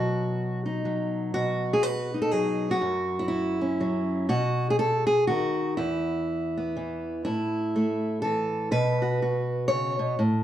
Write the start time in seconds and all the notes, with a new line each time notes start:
Already playing: B2 F#3 F#4
0.66 D#4
0.85 F#3
1.34 B2 F#4
1.73 G#4
1.83 B4
2.14 D#4
2.22 A4
2.31 F#3 G#4
2.71 F#4
2.82 F#2
3.19 E4
3.28 E4
3.61 C#4
3.81 F#3
4.29 B2 F#4
4.70 G#4
4.79 A4
5.07 G#4
5.27 D#3 F#4
5.77 E2 E4
6.57 B3
6.76 E3
7.25 A2 E4
7.76 A3
8.22 E3 A4
8.71 B2 B4
9.02 F#4
9.22 F#4
9.68 C#3 C#5
9.99 B2
10.19 A2